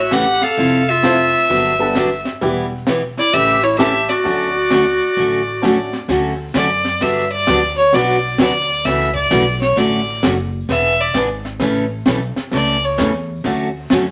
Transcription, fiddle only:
0.00 0.14 E5 medium
0.13 0.44 F#5 medium
0.43 0.91 F5 loud
0.89 2.27 E5 loud
3.19 3.35 D5 medium
3.34 3.65 E5 medium
3.64 3.77 C#5 medium
3.78 4.11 E5 loud
4.09 5.93 D5 medium
6.56 7.04 D5 medium
7.02 7.31 E5 medium
7.32 7.74 D5 medium
7.77 7.96 C#5 medium
7.94 8.39 D5 medium
8.40 8.87 D5 medium
8.85 9.14 E5 medium
9.15 9.58 D5 medium
9.61 9.80 C#5 medium
9.78 10.23 D5 medium
10.70 11.02 E5 medium
11.01 11.15 D5 medium
12.54 12.86 D5 medium
12.84 12.99 C#5 medium

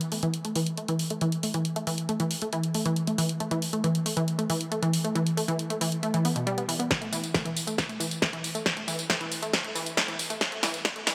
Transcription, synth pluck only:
0.12 0.17 A3 medium
0.23 0.28 E3 loud
0.45 0.50 A3 medium
0.56 0.60 E3 loud
0.78 0.82 A3 medium
0.89 0.93 E3 loud
1.11 1.15 A3 medium
1.22 1.26 E3 loud
1.43 1.48 A3 medium
1.54 1.59 E3 loud
1.76 1.81 A3 medium
1.87 1.92 E3 loud
2.09 2.14 A3 medium
2.20 2.25 E3 loud
2.42 2.47 A3 medium
2.53 2.58 E3 loud
2.75 2.79 A3 medium
2.86 2.90 E3 loud
3.08 3.12 A3 medium
3.18 3.23 E3 loud
3.40 3.45 A3 medium
3.51 3.56 E3 loud
3.73 3.78 A3 medium
3.84 3.89 E3 loud
4.06 4.11 A3 medium
4.17 4.22 E3 loud
4.39 4.44 A3 medium
4.50 4.55 E3 loud
4.72 4.76 A3 medium
4.83 4.87 E3 loud
5.04 5.09 A3 medium
5.15 5.20 E3 loud
5.37 5.42 A3 medium
5.48 5.53 E3 loud
5.70 5.75 A3 medium
5.81 5.86 E3 loud
6.03 6.08 A3 medium
6.14 6.19 E3 loud
6.25 6.32 B3 medium
6.36 6.39 B2 medium
6.47 6.52 G3 loud
6.58 6.63 B3 medium
6.69 6.73 E3 medium
6.79 6.87 B3 medium
7.01 7.06 A3 medium
7.12 7.17 E3 loud
7.34 7.39 A3 medium
7.45 7.50 E3 medium
7.67 7.72 A3 medium
7.89 7.94 A3 medium
8.00 8.05 E3 medium
8.22 8.27 A3 medium
8.33 8.38 E3 medium
8.55 8.60 A3 medium
8.77 8.82 A3 medium
8.88 8.92 E3 loud
9.10 9.14 A3 medium
9.21 9.25 E3 loud
9.42 9.47 A3 medium
9.64 9.69 A3 medium
9.75 9.80 E3 loud
9.97 10.02 A3 medium
10.08 10.13 E3 loud
10.30 10.35 A3 medium
10.52 10.57 A3 medium
10.63 10.68 E3 loud
10.96 11.01 A3 medium
11.07 11.12 E3 loud

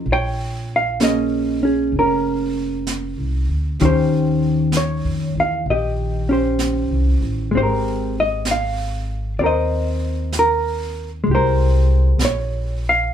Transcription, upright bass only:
0.06 1.89 A#1 medium
1.92 3.13 F1 medium
3.18 3.46 C2 soft
3.49 3.78 D2 medium
3.81 5.01 D#2 medium
5.04 5.33 F2 soft
5.35 5.64 E2 medium
5.66 6.86 A#1 medium
6.90 7.19 C2 soft
7.21 7.50 A1 medium
7.53 9.35 G#1 medium
9.39 11.21 D#2 medium
11.27 12.15 C2 medium
12.18 13.08 A#1 medium

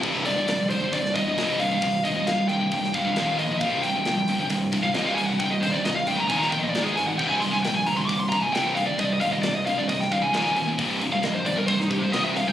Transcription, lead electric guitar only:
0.26 0.68 D5 medium
0.69 0.92 C5 medium
0.94 1.14 D5 medium
1.15 1.78 D#5 medium
1.60 2.02 F5 loud
2.04 2.26 D#5 medium
2.27 2.48 F5 loud
2.48 3.12 G5 loud
2.95 3.36 F5 medium
3.39 3.60 D#5 loud
3.60 3.83 F5 medium
3.82 4.46 G5 medium
4.83 4.95 F5 medium
4.95 5.06 D#5 medium
5.06 5.18 F5 medium
5.14 5.26 G#5 loud
5.27 5.39 F#5 medium
5.40 5.51 G5 medium
5.50 5.62 D#5 medium
5.60 5.73 C5 medium
5.71 5.84 D5 medium
5.85 5.96 D#5 medium
5.96 6.07 F5 medium
6.07 6.18 G5 loud
6.16 6.29 A#5 loud
6.28 6.40 G#5 medium
6.36 6.50 A#5 loud
6.48 6.61 G5 loud
6.58 6.70 D#5 medium
6.70 6.84 D5 medium
6.83 6.91 G#4 medium
6.96 7.06 G#5 loud
7.07 7.18 F#5 medium
7.18 7.29 G5 medium
7.29 7.41 G#5 loud
7.40 7.52 C6 loud
7.52 7.63 G#5 medium
7.63 7.75 G5 loud
7.75 7.87 G#5 loud
7.87 7.96 A#5 loud
7.97 8.08 C6 medium
8.08 8.19 D6 loud
8.20 8.29 C6 loud
8.29 8.42 A#5 loud
8.42 8.53 G#5 medium
8.53 8.75 G5 loud
8.75 8.86 F5 loud
8.87 8.98 D5 medium
8.99 9.05 D#5 loud
9.05 9.13 D5 medium
9.13 9.21 D#5 medium
9.21 9.32 F5 loud
9.33 9.42 D#5 medium
9.43 9.54 D5 medium
9.55 9.65 D#5 medium
9.66 9.77 F5 loud
9.79 9.88 D5 medium
9.88 10.00 D#5 medium
10.01 10.11 G5 loud
10.11 10.22 F5 medium
10.22 10.64 G#5 medium
11.12 11.25 F5 medium
11.25 11.35 D#5 loud
11.34 11.45 C5 loud
11.46 11.57 D5 loud
11.57 11.67 A#4 medium
11.67 11.78 C5 loud
11.80 11.91 D#4 medium
11.89 12.01 G4 loud
11.99 12.12 C5 medium
12.12 12.23 D#5 medium
12.24 12.35 E5 medium
12.37 12.47 F5 loud
12.47 12.52 G5 medium

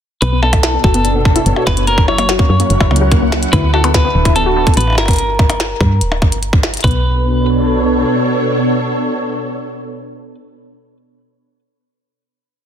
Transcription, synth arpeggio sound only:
0.22 0.31 B3 loud
0.32 0.38 B3 medium
0.43 0.52 B3 medium
0.63 0.73 E4 loud
0.74 0.83 B3 medium
0.84 0.94 F#4 loud
0.94 1.03 B3 loud
1.05 1.10 B3 medium
1.15 1.24 B3 medium
1.36 1.46 E4 loud
1.46 1.56 B3 medium
1.56 1.66 F#4 loud
1.67 1.76 B3 loud
1.77 1.83 B3 medium
1.87 1.97 A#3 medium
2.08 2.18 E4 loud
2.18 2.28 A#3 medium
2.29 2.39 F#4 loud
2.39 2.48 A#3 loud
2.49 2.55 A#3 medium
2.60 2.69 A#3 medium
2.81 2.90 E4 loud
2.91 3.01 A#3 medium
3.01 3.11 F#4 loud
3.12 3.21 A#3 loud
3.22 3.27 A#3 medium
3.32 3.41 A#3 medium
3.53 3.63 E4 loud
3.63 3.73 B3 medium
3.74 3.83 F#4 loud
3.84 3.93 B3 loud
3.94 4.00 B3 medium
4.05 4.14 B3 medium
4.25 4.35 E4 loud
4.36 4.46 B3 medium
4.46 4.56 F#4 loud
4.56 4.66 B3 loud
4.67 4.72 B3 medium
4.77 4.86 B3 medium
4.98 5.08 E4 loud
5.08 5.18 B3 medium
6.84 7.03 B3 medium

